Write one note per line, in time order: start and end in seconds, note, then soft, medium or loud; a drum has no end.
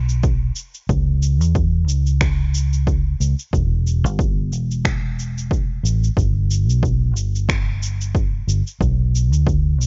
0.00 0.50 B1 medium
0.09 shaker soft
0.23 kick loud
0.23 shaker soft
0.56 shaker medium
0.74 shaker soft
0.89 1.41 C#2 loud
0.89 kick loud
0.89 shaker soft
1.23 shaker medium
1.41 1.88 E2 medium
1.41 shaker soft
1.55 kick loud
1.55 shaker soft
1.88 3.13 C#2 medium
1.88 shaker medium
2.07 shaker soft
2.21 finger snap medium
2.21 kick loud
2.21 shaker soft
2.54 shaker medium
2.73 shaker soft
2.87 kick loud
2.87 shaker soft
3.20 3.33 C#2 medium
3.20 shaker medium
3.39 shaker soft
3.53 4.04 E1 loud
3.53 kick loud
3.53 shaker soft
3.87 shaker medium
4.04 4.52 G1 medium
4.04 shaker soft
4.19 kick loud
4.19 shaker soft
4.52 5.77 E1 medium
4.52 shaker medium
4.71 shaker soft
4.85 finger snap medium
4.85 kick loud
4.85 shaker soft
5.19 shaker medium
5.38 shaker soft
5.51 kick loud
5.51 shaker soft
5.83 6.08 A1 medium
5.83 shaker medium
6.04 shaker soft
6.17 6.69 G1 medium
6.17 kick loud
6.17 shaker soft
6.51 shaker medium
6.69 7.16 B1 medium
6.69 shaker soft
6.83 kick medium
6.83 shaker soft
7.16 8.41 G1 medium
7.16 shaker medium
7.35 shaker soft
7.49 finger snap medium
7.49 kick loud
7.49 shaker soft
7.83 shaker medium
8.01 shaker soft
8.15 kick loud
8.15 shaker soft
8.48 8.61 G1 medium
8.48 shaker medium
8.67 shaker soft
8.81 9.32 B1 loud
8.81 kick medium
8.81 shaker soft
9.15 shaker medium
9.32 9.79 D2 medium
9.32 shaker soft
9.47 kick medium
9.47 shaker soft
9.79 9.87 B1 medium
9.79 shaker medium